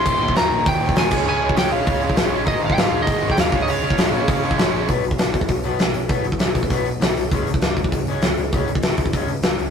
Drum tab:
CC |x-------------x-|----------------|----------------|----------------|
HH |----o---o---o---|----o---o---o---|o---o---o---o---|o---o---o---o---|
SD |----o-------o---|----o-------o---|----o-------o---|----o-------o---|
BD |o--o----o--o--o-|---o----o--o----|o--o----o--o--o-|---o----o--o----|

CC |----------------|----------------|----------------|----------------|
HH |o-o-o-o-o-o-o-o-|o-o-o-o-o-o-o-o-|o-o-o-o-o-o-o-o-|o-o-o-o-o-o-o-o-|
SD |----o-------o---|----o-------o---|----o-------o---|----o-------o---|
BD |o--o--ooo-------|o--o--ooo-------|o--o--ooo-------|o--o--ooo-------|